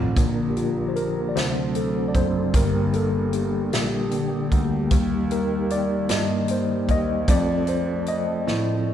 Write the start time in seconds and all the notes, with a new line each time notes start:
Already playing: A1 F3 A3 C4 F4 A4 C5
0.15 A#1 D3 F3 A#3 D4 A#4, kick, closed hi-hat
0.49 G4
0.57 F4, closed hi-hat
0.88 C5
0.96 A#4, closed hi-hat
1.29 D5
1.34 D2 C3 F#3 A3 C4 A4 C5, snare, closed hi-hat
1.75 A4, closed hi-hat
2.08 D5
2.14 F#1 C5, kick, closed hi-hat
2.53 G1 D3 G3 A#3 G4 A#4, kick, closed hi-hat
2.93 A4, closed hi-hat
3.33 G4, closed hi-hat
3.73 A#1, snare, closed hi-hat
4.11 D3 G3 A#3, closed hi-hat
4.52 D2, kick, closed hi-hat
4.91 D#2 D#3 G3 A#3 D#4, kick, closed hi-hat
5.31 A#4, closed hi-hat
5.70 D5, closed hi-hat
6.09 G2 D#3 G3 A#3 D#5, snare, closed hi-hat
6.48 C5, closed hi-hat
6.88 D#2 D#5, kick, closed hi-hat
7.27 F2 F3 A3 C4 A4 D5, kick, closed hi-hat
7.67 C5, closed hi-hat
8.06 D#5, closed hi-hat
8.47 A2, snare